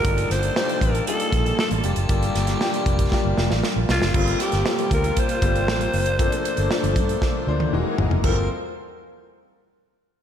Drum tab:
CC |----------------|----------------|x---------------|----------------|
HH |xxxx-xxxxxxx-xxx|xxxx-xxx--------|-xxx-xxxxxxx-xox|xxxx-xxx--------|
SD |--o-o-------o---|--ooo---o-ooo-oo|--ooo-------o---|----o---o-------|
T1 |----------------|----------------|----------------|-----------o----|
FT |----------------|----------------|----------------|--------------oo|
BD |o-----o---o-----|o-----ooo-------|o-----o-o-o-----|o-----o-o-------|

CC |x---------------|
HH |----------------|
SD |----------------|
T1 |----------------|
FT |----------------|
BD |o---------------|